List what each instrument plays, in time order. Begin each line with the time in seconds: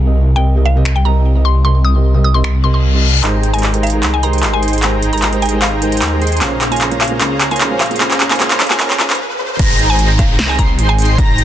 Already playing: detuned saw bass C2
0.05 felt piano C3 C4 G4 A#4 D#5
0.35 felt piano C3 C4 G4 A#4 D#5, synth pluck G5
0.55 felt piano C3 C4 G4 A#4 D#5
0.66 synth pluck F5
0.75 felt piano C3 C4 G4 A#4 D#5
0.85 finger snap
0.96 synth pluck G5
1.04 felt piano C3 C4 G4 A#4 D#5, synth pluck A#5
1.35 felt piano C3 C4 G4 A#4 D#5
1.45 synth pluck C6
1.64 felt piano C3 C4 G4 A#4 D#5, synth pluck C6
1.85 synth pluck D#6
1.94 felt piano C3 C4 G4 A#4 D#5
2.14 felt piano C3 C4 G4 A#4 D#5
2.24 synth pluck D#6
2.34 felt piano C3 C4 G4 A#4 D#5, synth pluck C6
2.44 synth pluck C6, finger snap, reverse cymbal
2.63 felt piano C3 C4 G4 A#4 D#5, synth pluck C6
2.74 synth pluck C6
2.94 felt piano C3 C4 G4 A#4 D#5
3.23 detuned saw bass G#1, felt piano G#3 D#4 G4 A#4 C5, supersaw synth D#4 G#4 C5 G5 A#5, clap, closed hi-hat, riser
3.43 closed hi-hat
3.53 felt piano G#3 D#4 G4 A#4 C5, supersaw synth D#4 G#4 C5 G5 A#5, synth pluck G#5, closed hi-hat
3.59 closed hi-hat
3.63 clap, closed hi-hat
3.73 felt piano G#3 D#4 G4 A#4 C5, closed hi-hat
3.83 synth pluck F5, closed hi-hat
3.87 closed hi-hat
3.90 felt piano G#3 D#4 G4, closed hi-hat
3.94 felt piano A#4 C5
4.03 detuned saw bass C2, clap, closed hi-hat
4.14 synth pluck G#5
4.22 felt piano G#3 D#4 G4 A#4 C5, supersaw synth D#4 G#4 C5 G5 C6, synth pluck A#5, closed hi-hat
4.33 closed hi-hat
4.38 closed hi-hat
4.43 detuned saw bass G#1, clap, closed hi-hat
4.52 felt piano G#3 D#4 G4 A#4 C5, synth pluck G#5
4.63 closed hi-hat
4.68 closed hi-hat
4.73 closed hi-hat
4.78 felt piano G#3, closed hi-hat
4.82 felt piano D#4 G4 A#4 C5, supersaw synth D#4 G#4 C5 G5 A#5, clap, closed hi-hat
5.03 detuned saw bass G#1, closed hi-hat
5.12 felt piano G#3 D#4 G4 A#4 C5, supersaw synth D#4 G#4 C5 G5 A#5, synth pluck A#5, closed hi-hat
5.18 closed hi-hat
5.22 synth pluck A#5, clap, closed hi-hat
5.32 felt piano G#3 D#4 G4 A#4 C5, closed hi-hat
5.42 synth pluck G#5, closed hi-hat
5.46 closed hi-hat
5.49 felt piano G#3 D#4 G4, closed hi-hat
5.53 felt piano A#4 C5
5.62 synth pluck F5, clap, closed hi-hat
5.81 felt piano G#3 D#4 G4 A#4 C5, closed hi-hat
5.92 detuned saw bass G#1, closed hi-hat
5.97 closed hi-hat
6.02 detuned saw bass D#2, clap, closed hi-hat
6.11 felt piano G#3 D#4 G4 A#4 C5
6.22 supersaw synth D#4 G#4 C5 G5 C6, closed hi-hat
6.27 closed hi-hat
6.32 closed hi-hat
6.37 felt piano A#3, closed hi-hat
6.41 detuned saw bass A#1, supersaw synth C#4 C5 F5 A#5, felt piano F4 G#4 C5 C#5, clap, closed hi-hat
6.61 clap, closed hi-hat
6.71 felt piano A#3 F4 G#4 C5 C#5, supersaw synth C#4 G#4 C5 F5 A#5, synth pluck G#5, closed hi-hat
6.76 closed hi-hat
6.81 clap, closed hi-hat
6.91 felt piano A#3 F4 G#4 C5 C#5, closed hi-hat
7.01 synth pluck F5, clap, closed hi-hat
7.04 closed hi-hat
7.08 felt piano A#3 F4 G#4, closed hi-hat
7.12 felt piano C5 C#5
7.20 detuned saw bass C#2, felt piano A#3 F4 G#4 C5 C#5, supersaw synth C#4 G#4 C5 F5 A#5, clap, closed hi-hat
7.41 clap, closed hi-hat
7.50 felt piano A#3 F4 G#4 C5 C#5, supersaw synth C#4 G#4 C5 F5 A#5, synth pluck G#5, closed hi-hat
7.56 closed hi-hat
7.61 detuned saw bass A#1, clap, closed hi-hat
7.70 felt piano A#3 F4 G#4 C5 C#5
7.81 synth pluck F5, clap, closed hi-hat
7.86 closed hi-hat
7.90 felt piano A#3 F4 G#4 C5 C#5, closed hi-hat
7.96 felt piano A#3, closed hi-hat
8.00 supersaw synth C#4 G#4 C5 F5 A#5, felt piano F4 G#4 C5 C#5, clap, closed hi-hat
8.11 clap
8.20 detuned saw bass A#1, clap, closed hi-hat
8.30 felt piano A#3 F4 G#4 C5 C#5, supersaw synth C#4 G#4 C5 F5 A#5, synth pluck G#5, clap, closed hi-hat
8.36 felt piano A#3, closed hi-hat
8.40 supersaw synth C#4 G#4 C5 F5 A#5, felt piano F4 G#4 C5, clap, closed hi-hat
8.51 clap, closed hi-hat
8.60 clap, closed hi-hat
8.64 closed hi-hat
8.67 felt piano A#3 F4 G#4, supersaw synth C#4 G#4 C5 F5 A#5, synth pluck G#5, clap, closed hi-hat
8.71 felt piano C5 C#5
8.79 felt piano A#3 F4 C5 C#5, supersaw synth C#4 G#4 C5 F5 A#5, synth pluck G#5, clap, closed hi-hat
8.90 clap
8.99 felt piano A#3 F4 G#4 C5 C#5, supersaw synth C#4 G#4 C5 F5 A#5, synth pluck G#5, clap, closed hi-hat
9.10 detuned saw bass A#1, clap, closed hi-hat
9.15 closed hi-hat
9.59 detuned saw bass G#1, supersaw synth D#4 G#4 C5 G5 A#5, digital synth lead A#5, kick, closed hi-hat, crash, downlifter
9.79 closed hi-hat
9.90 supersaw synth D#4 G#4 C5 G5 A#5, synth pluck G#5, digital synth lead A#5
9.99 closed hi-hat
10.19 synth pluck F5, kick, closed hi-hat
10.39 detuned saw bass C2, snare, closed hi-hat
10.49 synth pluck G#5
10.59 supersaw synth D#4 G#4 C5 G5 C6, synth pluck A#5, digital synth lead C6, kick, closed hi-hat
10.79 detuned saw bass G#1, closed hi-hat
10.89 synth pluck G#5
10.99 closed hi-hat, open hi-hat
11.05 closed hi-hat
11.18 supersaw synth D#4 G#4 C5, digital synth lead A#5, kick, closed hi-hat
11.38 detuned saw bass G#1, closed hi-hat